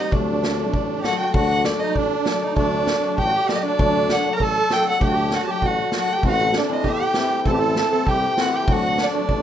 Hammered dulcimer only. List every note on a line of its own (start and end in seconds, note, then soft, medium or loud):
0.00 0.17 G3 medium
0.11 0.56 F#3 medium
0.11 0.35 A3 medium
0.11 0.34 D4 medium
0.57 1.02 F#3 medium
0.57 0.81 A3 medium
0.57 0.81 D4 medium
1.03 1.33 F#3 medium
1.03 1.19 A3 medium
1.03 1.19 D4 medium
1.33 1.78 F#3 medium
1.33 1.57 A3 medium
1.33 1.57 D4 medium
1.79 2.24 F#3 medium
1.79 2.02 A3 medium
1.79 2.02 D4 medium
2.25 2.55 F#3 medium
2.25 2.41 A3 medium
2.25 2.41 D4 medium
2.55 3.02 F#3 medium
2.55 2.79 A3 medium
2.55 2.79 D4 medium
3.03 3.49 F#3 medium
3.03 3.26 A3 medium
3.03 3.26 D4 medium
3.50 3.77 F#3 medium
3.50 3.64 A3 medium
3.50 3.64 D4 medium
3.78 4.25 F#3 medium
3.78 4.02 A3 medium
3.78 4.02 D4 medium
4.26 4.69 F#3 medium
4.26 4.48 A3 medium
4.26 4.48 D4 medium
4.70 4.99 F#3 medium
4.70 4.86 A3 medium
4.70 4.86 D4 medium
5.00 5.46 F#3 medium
5.00 5.24 A3 medium
5.00 5.24 D4 medium
5.47 5.92 F#3 medium
5.47 5.70 A3 medium
5.47 5.70 D4 medium
5.93 6.28 F#3 medium
5.93 6.08 A3 soft
5.93 6.08 D4 medium
6.23 6.68 E3 medium
6.23 6.47 A3 medium
6.23 6.46 C4 medium
6.69 7.15 E3 medium
6.69 6.92 A3 medium
6.69 6.92 C4 medium
7.16 7.45 E3 medium
7.16 7.31 A3 medium
7.16 7.30 C4 medium
7.46 7.91 E3 medium
7.46 7.69 A3 medium
7.46 7.69 C4 medium
7.92 8.36 E3 medium
7.92 8.14 A3 medium
7.92 8.15 C4 medium
8.37 8.73 E3 medium
8.37 8.52 A3 medium
8.37 8.53 C4 medium
8.68 9.12 F#3 medium
8.68 8.91 A3 medium
8.68 8.91 D4 medium
9.13 9.42 F#3 medium
9.13 9.36 A3 medium
9.13 9.36 D4 medium